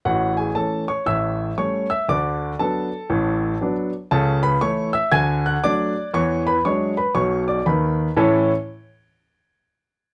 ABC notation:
X:1
M:4/4
L:1/8
Q:"Swing" 1/4=118
K:A
V:1 name="Grand piano"
[Ff] [Gg] [Aa] [cc'] [ee']2 [cc'] [ee'] | [dd']2 [Aa]4- [Aa] z | [Aa] [Bb] [cc'] [ee'] [gg'] [ff'] [dd']2 | [cc'] [Bb] [cc'] [Bb] [cc'] [dd'] [Bb]2 |
[A,,E,CEAca] z6 z |]
V:2 name="Grand piano" clef=bass
[A,,,A,,]2 [E,A,C]2 [A,,,A,,]2 [=G,A,C]2 | [D,,D,]2 [F,B,D]2 [A,,,A,,]2 [F,B,D]2 | [C,,C,]2 [E,A,E]2 [D,,D,]2 [F,A,D]2 | [E,,E,]2 [F,G,D]2 [B,,,B,,]2 [^D,,^D,]2 |
z8 |]